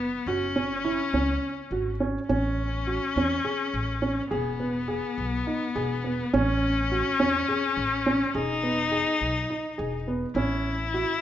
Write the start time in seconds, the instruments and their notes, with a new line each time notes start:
Already playing: upright bass F#1, viola B3
0.26 upright bass F#1, viola C#4, grand piano F#4
0.56 grand piano C#4
0.84 grand piano E4
1.13 upright bass C#2, grand piano C#4
1.71 upright bass G#1, grand piano F#4
2.00 grand piano C#4
2.28 upright bass A1, viola C#4, grand piano C#4
2.87 grand piano F#4
3.16 upright bass E2, grand piano C#4
3.44 grand piano G#4
3.74 upright bass A1
4.02 grand piano C#4
4.30 upright bass E1, viola B3, grand piano G#4
4.60 grand piano B3
4.88 grand piano G#4
5.18 upright bass B1
5.47 grand piano D#4
5.76 upright bass E1, grand piano G#4
6.04 grand piano B3
6.33 upright bass A1, grand piano C#4, viola C#4
6.92 grand piano F#4
7.20 upright bass E2, grand piano C#4
7.48 grand piano G#4
7.77 upright bass A1
8.06 grand piano C#4
8.34 upright bass E1, viola D#4, grand piano G#4
8.63 grand piano B3
8.91 grand piano G#4
9.21 upright bass B1
9.50 grand piano D#4
9.78 upright bass E1, grand piano G#4
10.08 grand piano B3
10.35 upright bass A1, grand piano C#4, viola E4
10.94 grand piano F#4